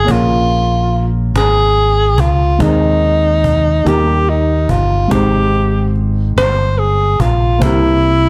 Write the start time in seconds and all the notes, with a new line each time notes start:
Already playing: G#4
0.04 A#2 A#3 C#4 F4
0.08 A#1 F4 G#4 A#4, cajon bass
0.51 cajon slap
0.93 cajon slap
1.34 G#1 G#4, cajon slap
1.76 cajon slap
2.18 C#2 F4, cajon bass
2.58 D#2 D#3 G#3 C4 D#4 G#4 A#4, cajon bass
2.68 C5
3.03 cajon slap
3.44 cajon bass
3.84 D#2 D#3 G3 A#3 D#4 G4 A#4, cajon slap
4.27 D#4, cajon slap
4.69 G1 F4, cajon bass
5.08 G#1 G#2 G#3 C4 D#4, cajon bass
5.12 G4 C5 G5
5.53 cajon slap
5.96 cajon slap
6.36 G1 C5, cajon slap
6.78 G#4, cajon slap
7.20 A#1 F4, cajon bass
7.58 C2 C3 A#3 E4 C5, cajon bass
7.63 E4 G4 A#4
8.03 cajon slap